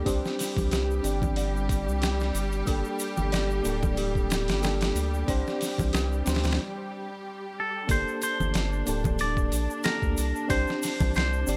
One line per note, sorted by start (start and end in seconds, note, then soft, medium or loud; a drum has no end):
0.00 7.90 G3 medium
0.00 7.91 G4 medium
0.05 0.22 C2 medium
0.05 1.00 C4 medium
0.05 1.00 D4 medium
0.05 0.37 G4 medium
0.05 1.01 G4 medium
0.05 1.01 C5 loud
0.05 kick loud
0.05 open hi-hat medium
0.05 shaker medium
0.25 snare soft
0.25 shaker soft
0.39 snare soft
0.39 open hi-hat medium
0.39 shaker medium
0.57 0.70 C2 medium
0.57 kick loud
0.57 low conga medium
0.57 shaker soft
0.71 1.00 C2 medium
0.71 1.34 G4 medium
0.71 snare loud
0.71 open hi-hat medium
0.71 shaker soft
0.91 shaker soft
1.03 1.89 G1 medium
1.03 2.63 C4 medium
1.03 2.63 D4 medium
1.03 2.64 G4 medium
1.03 2.65 D5 medium
1.03 open hi-hat medium
1.03 shaker medium
1.22 kick loud
1.22 low conga medium
1.22 shaker soft
1.36 1.68 D5 medium
1.36 open hi-hat medium
1.36 shaker soft
1.57 shaker soft
1.69 kick loud
1.69 open hi-hat medium
1.69 shaker medium
1.87 2.32 C2 medium
1.87 shaker soft
2.01 2.33 G4 medium
2.01 snare loud
2.01 open hi-hat medium
2.01 shaker soft
2.20 snare soft
2.20 shaker soft
2.34 2.63 G1 medium
2.34 open hi-hat medium
2.34 shaker medium
2.52 closed hi-hat soft
2.52 shaker soft
2.65 2.83 G1 medium
2.65 3.61 A#3 medium
2.65 3.61 D4 medium
2.65 3.29 G4 medium
2.65 3.62 G4 medium
2.65 3.62 A4 medium
2.65 kick loud
2.65 open hi-hat medium
2.65 shaker medium
2.85 shaker soft
2.99 open hi-hat medium
2.99 shaker medium
3.17 3.31 G1 medium
3.17 low conga medium
3.17 shaker soft
3.32 3.61 G1 medium
3.32 3.63 D5 medium
3.32 snare loud
3.32 open hi-hat medium
3.32 shaker soft
3.50 shaker soft
3.64 4.49 D1 loud
3.64 4.58 A#3 medium
3.64 4.59 D4 medium
3.64 4.60 G4 medium
3.64 4.60 A4 medium
3.64 open hi-hat medium
3.64 shaker medium
3.83 kick medium
3.83 low conga medium
3.83 shaker soft
3.97 4.29 G4 medium
3.97 open hi-hat medium
3.97 shaker soft
4.15 kick medium
4.15 shaker soft
4.30 snare loud
4.30 open hi-hat medium
4.30 shaker medium
4.48 4.92 G1 medium
4.48 snare loud
4.48 open hi-hat medium
4.48 shaker soft
4.62 4.79 A#3 medium
4.62 4.80 D4 medium
4.62 5.25 G4 medium
4.62 4.80 G4 medium
4.62 4.80 A4 medium
4.62 snare loud
4.62 open hi-hat medium
4.62 shaker medium
4.81 snare loud
4.81 open hi-hat medium
4.81 shaker soft
4.95 5.24 D2 medium
4.95 open hi-hat medium
4.95 shaker medium
5.14 shaker soft
5.27 5.44 C2 medium
5.27 6.22 C4 medium
5.27 6.22 D4 medium
5.27 6.23 G4 medium
5.27 6.23 C5 loud
5.27 5.59 D5 loud
5.27 kick loud
5.27 open hi-hat medium
5.27 shaker soft
5.47 snare soft
5.47 shaker soft
5.61 snare soft
5.61 open hi-hat medium
5.61 shaker medium
5.78 5.92 C2 medium
5.78 kick medium
5.78 low conga medium
5.78 shaker soft
5.93 6.23 C2 medium
5.93 6.24 G4 medium
5.93 snare loud
5.93 open hi-hat medium
5.93 shaker medium
6.13 shaker soft
6.25 6.59 D2 loud
6.25 6.58 C4 medium
6.25 6.58 D4 medium
6.25 6.59 G4 medium
6.25 6.60 C5 medium
6.25 snare medium
6.25 open hi-hat medium
6.25 shaker medium
6.35 snare medium
6.35 open hi-hat medium
6.44 snare medium
6.44 open hi-hat medium
6.44 low conga medium
6.44 shaker soft
6.51 snare medium
6.51 open hi-hat medium
7.60 7.91 A4 medium
7.87 8.04 G1 loud
7.87 8.82 A#3 medium
7.87 11.57 D4 medium
7.87 8.83 D4 medium
7.87 8.83 G4 medium
7.87 8.84 A4 medium
7.87 8.22 C5 loud
7.87 kick loud
7.87 open hi-hat medium
7.87 shaker medium
8.08 shaker soft
8.22 9.20 C5 loud
8.22 open hi-hat medium
8.22 shaker medium
8.40 8.53 G1 medium
8.40 low conga medium
8.40 shaker soft
8.54 8.83 G1 medium
8.54 snare loud
8.54 open hi-hat medium
8.54 shaker medium
8.73 shaker soft
8.86 9.52 D1 loud
8.86 9.81 A#3 medium
8.86 9.81 D4 medium
8.86 9.81 G4 medium
8.86 9.82 A4 medium
8.86 open hi-hat medium
8.86 shaker medium
9.04 kick loud
9.04 low conga medium
9.04 shaker soft
9.19 9.84 D5 loud
9.19 open hi-hat medium
9.19 shaker medium
9.37 kick loud
9.37 shaker soft
9.52 9.68 A#1 loud
9.52 open hi-hat medium
9.52 shaker medium
9.70 shaker soft
9.83 10.01 A#3 medium
9.83 10.01 D4 medium
9.83 10.02 G4 medium
9.83 10.02 A4 medium
9.83 10.50 A#4 medium
9.83 snare loud
9.83 open hi-hat medium
9.83 shaker soft
10.02 10.15 D2 medium
10.02 kick medium
10.02 shaker soft
10.17 10.33 C2 medium
10.17 open hi-hat medium
10.17 shaker loud
10.36 shaker soft
10.48 10.66 C2 loud
10.48 11.43 C4 medium
10.48 11.44 D4 medium
10.48 11.44 G4 medium
10.48 11.11 C5 loud
10.48 11.45 C5 loud
10.48 kick loud
10.48 open hi-hat medium
10.48 shaker medium
10.67 snare soft
10.67 shaker soft
10.83 snare soft
10.83 open hi-hat medium
10.83 shaker medium
11.00 11.13 C2 medium
11.00 kick medium
11.00 low conga medium
11.00 shaker soft
11.14 11.45 C2 medium
11.14 11.57 C5 medium
11.14 snare loud
11.14 open hi-hat medium
11.14 shaker medium
11.33 shaker soft
11.46 11.57 G1 loud
11.46 11.57 C4 medium
11.46 11.57 D4 medium
11.46 11.57 G4 medium
11.46 11.57 D5 medium
11.46 open hi-hat medium
11.46 shaker loud